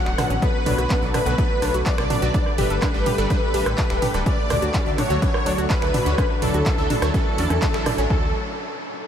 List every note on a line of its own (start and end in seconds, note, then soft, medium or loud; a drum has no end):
0.00 4.22 D3 medium
0.00 0.15 F#3 medium
0.00 2.30 F#3 medium
0.00 0.38 A3 medium
0.00 2.30 B3 medium
0.00 0.15 D4 medium
0.00 2.30 F#4 medium
0.00 0.15 A4 medium
0.00 0.15 D5 loud
0.00 0.32 F#5 loud
0.00 0.33 F#5 loud
0.06 0.14 D1 medium
0.06 finger snap medium
0.06 clap soft
0.18 0.30 F#3 medium
0.18 0.30 D4 medium
0.18 0.21 D4 medium
0.18 0.30 A4 medium
0.18 0.30 B4 medium
0.18 cross-stick medium
0.18 mid tom medium
0.18 open hi-hat loud
0.18 ride medium
0.18 high conga medium
0.30 0.38 A1 medium
0.30 0.35 C#4 medium
0.30 closed hi-hat medium
0.42 0.54 F#3 medium
0.42 8.06 A3 medium
0.42 0.47 B3 medium
0.42 0.54 D4 medium
0.42 0.54 A4 medium
0.42 1.05 B4 loud
0.42 0.54 B4 medium
0.42 1.05 B4 loud
0.42 kick loud
0.42 closed hi-hat medium
0.42 ride medium
0.66 0.74 B1 medium
0.66 0.78 F#3 medium
0.66 0.71 D4 loud
0.66 0.78 D4 medium
0.66 0.78 A4 medium
0.66 0.78 C#5 medium
0.66 mid tom medium
0.66 open hi-hat loud
0.66 ride medium
0.78 0.86 B1 medium
0.78 0.83 F#4 medium
0.78 cross-stick soft
0.78 closed hi-hat medium
0.90 0.95 B3 loud
0.90 finger snap medium
0.90 kick loud
0.90 clap loud
0.90 closed hi-hat soft
0.90 ride medium
0.90 high conga medium
1.02 1.10 B1 medium
1.02 1.22 F#3 medium
1.02 1.22 D4 medium
1.02 1.22 A4 medium
1.02 1.22 D5 loud
1.14 1.17 D4 loud
1.14 1.77 B4 loud
1.14 cross-stick medium
1.14 mid tom medium
1.14 open hi-hat medium
1.14 ride medium
1.14 high conga medium
1.26 1.34 B1 medium
1.26 1.35 F#3 medium
1.26 1.35 D4 medium
1.26 1.29 F#4 loud
1.26 1.35 A4 medium
1.26 1.35 B4 loud
1.26 closed hi-hat medium
1.38 1.58 F#3 loud
1.38 1.43 B3 loud
1.38 1.58 D4 medium
1.38 1.58 A4 medium
1.38 1.58 B4 loud
1.38 kick loud
1.38 closed hi-hat medium
1.38 ride medium
1.62 1.70 B1 loud
1.62 1.74 F#3 medium
1.62 1.67 D4 loud
1.62 1.74 D4 medium
1.62 1.74 A4 medium
1.62 1.74 C#5 loud
1.62 cross-stick soft
1.62 open hi-hat loud
1.62 ride medium
1.74 1.82 B1 medium
1.74 1.79 F#4 medium
1.74 closed hi-hat medium
1.86 1.94 B3 medium
1.86 2.49 D5 loud
1.86 kick loud
1.86 clap loud
1.86 closed hi-hat soft
1.86 ride medium
1.98 2.06 B1 medium
1.98 2.19 F#3 medium
1.98 2.19 D4 medium
1.98 2.19 A4 medium
1.98 2.19 D5 loud
1.98 finger snap medium
1.98 cross-stick medium
2.10 2.13 D4 loud
2.10 mid tom medium
2.10 open hi-hat medium
2.10 ride medium
2.10 high conga medium
2.22 2.30 B1 medium
2.22 2.32 F#3 medium
2.22 2.32 D4 medium
2.22 2.25 F#4 loud
2.22 2.32 A4 medium
2.22 2.32 B4 medium
2.22 closed hi-hat medium
2.34 4.24 G3 medium
2.34 2.46 G3 medium
2.34 2.46 D4 medium
2.34 2.39 D4 medium
2.34 4.24 G4 medium
2.34 4.24 A4 medium
2.34 2.46 A4 medium
2.34 2.46 D5 medium
2.34 kick loud
2.34 closed hi-hat medium
2.34 ride medium
2.46 cross-stick soft
2.58 2.66 G1 loud
2.58 2.70 G3 medium
2.58 2.70 D4 medium
2.58 2.63 G4 loud
2.58 2.70 A4 medium
2.58 4.17 B4 loud
2.58 2.70 E5 medium
2.58 mid tom medium
2.58 open hi-hat loud
2.58 ride medium
2.70 2.78 G1 medium
2.70 2.75 A4 medium
2.70 closed hi-hat medium
2.82 2.87 D4 loud
2.82 finger snap medium
2.82 kick loud
2.82 cross-stick medium
2.82 clap loud
2.82 closed hi-hat medium
2.82 ride medium
2.82 high conga medium
2.94 3.02 G1 medium
2.94 3.14 G3 medium
2.94 3.14 D4 medium
2.94 3.14 A4 medium
2.94 3.14 G5 loud
3.06 3.09 G4 loud
3.06 mid tom medium
3.06 open hi-hat medium
3.06 ride medium
3.06 high conga medium
3.18 3.26 G1 medium
3.18 3.27 G3 medium
3.18 3.27 D4 medium
3.18 3.21 A4 loud
3.18 3.27 A4 medium
3.18 3.27 D5 loud
3.18 closed hi-hat medium
3.30 3.50 G3 loud
3.30 3.35 D4 loud
3.30 3.50 D4 medium
3.30 3.50 A4 medium
3.30 3.50 B4 loud
3.30 kick loud
3.30 cross-stick soft
3.30 closed hi-hat medium
3.30 ride medium
3.54 3.62 A1 loud
3.54 3.66 G3 medium
3.54 3.66 D4 medium
3.54 3.59 G4 loud
3.54 3.66 A4 medium
3.54 3.66 E5 loud
3.54 open hi-hat loud
3.54 ride medium
3.66 3.74 A1 medium
3.66 3.71 A4 medium
3.66 cross-stick medium
3.66 closed hi-hat medium
3.78 3.86 D4 medium
3.78 kick loud
3.78 clap loud
3.78 closed hi-hat medium
3.78 ride medium
3.90 3.98 D1 medium
3.90 4.11 G3 medium
3.90 4.11 D4 medium
3.90 4.11 A4 medium
3.90 4.11 G5 loud
3.90 finger snap medium
3.90 clap soft
4.02 4.05 G4 loud
4.02 mid tom medium
4.02 open hi-hat loud
4.02 ride medium
4.02 high conga medium
4.14 4.22 D1 medium
4.14 4.24 G3 medium
4.14 4.24 D4 medium
4.14 4.17 A4 loud
4.14 4.24 A4 medium
4.14 4.24 D5 medium
4.14 cross-stick soft
4.14 closed hi-hat medium
4.26 8.06 D3 medium
4.26 4.38 F#3 medium
4.26 8.06 F#3 medium
4.26 4.31 C#4 medium
4.26 8.06 D4 medium
4.26 4.38 D4 medium
4.26 6.16 F#4 medium
4.26 4.38 A4 medium
4.26 4.38 C#5 medium
4.26 4.88 D5 loud
4.26 4.89 D5 loud
4.26 kick loud
4.26 closed hi-hat medium
4.26 ride medium
4.50 4.58 D2 loud
4.50 4.62 F#3 medium
4.50 4.55 D4 loud
4.50 4.62 D4 medium
4.50 4.62 A4 medium
4.50 4.62 D5 medium
4.50 cross-stick medium
4.50 mid tom medium
4.50 open hi-hat loud
4.50 ride medium
4.62 4.70 D2 medium
4.62 4.67 F#4 medium
4.62 closed hi-hat medium
4.74 4.79 C#4 loud
4.74 finger snap medium
4.74 kick loud
4.74 clap loud
4.74 closed hi-hat medium
4.74 ride medium
4.74 high conga medium
4.86 4.94 D2 medium
4.86 5.06 F#3 medium
4.86 5.06 D4 medium
4.86 5.06 A4 medium
4.86 5.06 E5 loud
4.98 5.01 D4 loud
4.98 5.61 C#5 loud
4.98 cross-stick soft
4.98 mid tom medium
4.98 open hi-hat loud
4.98 ride medium
4.98 high conga medium
5.10 5.18 D2 medium
5.10 5.19 F#3 medium
5.10 5.19 D4 medium
5.10 5.13 F#4 loud
5.10 5.19 A4 medium
5.10 5.19 C#5 loud
5.10 closed hi-hat medium
5.22 5.42 F#3 loud
5.22 5.27 C#4 loud
5.22 5.42 D4 medium
5.22 5.42 A4 medium
5.22 5.42 B4 loud
5.22 kick loud
5.22 closed hi-hat medium
5.22 ride medium
5.34 cross-stick medium
5.46 5.54 D2 loud
5.46 5.58 F#3 medium
5.46 5.51 D4 loud
5.46 5.58 D4 medium
5.46 5.58 A4 medium
5.46 5.58 D5 loud
5.46 open hi-hat loud
5.46 ride medium
5.58 5.66 D2 medium
5.58 5.63 F#4 medium
5.58 closed hi-hat medium
5.70 5.78 C#4 medium
5.70 6.33 B4 loud
5.70 kick loud
5.70 clap loud
5.70 closed hi-hat medium
5.70 ride medium
5.82 5.90 D2 medium
5.82 6.03 F#3 loud
5.82 6.03 D4 medium
5.82 6.03 A4 medium
5.82 6.03 E5 loud
5.82 finger snap medium
5.82 cross-stick soft
5.94 5.97 D4 loud
5.94 mid tom medium
5.94 open hi-hat medium
5.94 ride medium
5.94 high conga medium
6.06 6.14 D2 medium
6.06 6.16 F#3 medium
6.06 6.16 D4 medium
6.06 6.09 F#4 loud
6.06 6.16 A4 medium
6.06 6.16 C#5 medium
6.06 closed hi-hat medium
6.18 6.23 C#4 medium
6.18 6.30 D4 medium
6.18 8.08 E4 medium
6.18 6.30 C#5 medium
6.18 kick loud
6.18 cross-stick medium
6.18 closed hi-hat medium
6.18 ride medium
6.42 6.50 D2 loud
6.42 6.54 F#3 medium
6.42 6.54 D4 medium
6.42 6.47 D4 loud
6.42 8.00 A4 loud
6.42 6.54 A4 medium
6.42 8.01 A4 loud
6.42 6.54 D5 medium
6.42 mid tom medium
6.42 open hi-hat loud
6.42 ride medium
6.54 6.62 D2 medium
6.54 6.59 F#4 medium
6.54 closed hi-hat medium
6.66 6.71 C#4 loud
6.66 finger snap medium
6.66 kick loud
6.66 cross-stick soft
6.66 clap loud
6.66 closed hi-hat medium
6.66 ride medium
6.66 high conga medium
6.78 6.86 D2 medium
6.78 6.98 F#3 loud
6.78 6.98 D4 medium
6.78 6.98 A4 medium
6.78 6.98 E5 loud
6.90 6.93 D4 loud
6.90 mid tom medium
6.90 open hi-hat loud
6.90 ride medium
6.90 high conga medium
7.02 7.10 D2 medium
7.02 7.11 F#3 medium
7.02 7.11 D4 medium
7.02 7.05 F#4 loud
7.02 7.11 A4 medium
7.02 7.11 C#5 loud
7.02 cross-stick medium
7.02 closed hi-hat medium
7.14 7.34 F#3 loud
7.14 7.19 C#4 loud
7.14 7.34 D4 medium
7.14 7.34 A4 medium
7.14 7.34 B4 loud
7.14 kick loud
7.14 closed hi-hat medium
7.14 ride medium
7.38 7.46 E2 loud
7.38 7.50 F#3 medium
7.38 7.43 C#4 medium
7.38 7.50 D4 medium
7.38 7.50 A4 medium
7.38 7.50 D5 medium
7.38 open hi-hat loud
7.38 ride medium
7.50 7.58 E2 medium
7.50 7.55 C#4 medium
7.50 cross-stick soft
7.50 closed hi-hat medium
7.50 high conga loud
7.62 7.65 A4 medium
7.62 kick loud
7.62 clap loud
7.62 closed hi-hat medium
7.62 ride medium
7.74 7.82 A1 medium
7.74 7.95 F#3 medium
7.74 7.95 D4 medium
7.74 7.95 A4 medium
7.74 7.95 E5 loud
7.74 finger snap medium
7.74 clap soft
7.86 7.94 D5 medium
7.86 cross-stick medium
7.86 mid tom medium
7.86 open hi-hat loud
7.86 ride medium
7.86 high conga medium
7.98 8.06 A1 medium
7.98 8.08 F#3 medium
7.98 8.03 C#4 medium
7.98 8.08 D4 medium
7.98 8.08 A4 medium
7.98 8.08 C#5 medium
7.98 closed hi-hat medium
8.10 8.32 D2 loud
8.10 8.33 D3 medium
8.10 8.28 F#3 medium
8.10 8.33 F#3 medium
8.10 8.33 A3 medium
8.10 8.33 C#4 medium
8.10 8.28 D4 medium
8.10 8.33 F#4 medium
8.10 8.28 A4 loud
8.10 8.28 A4 medium
8.10 8.28 C#5 loud
8.10 kick loud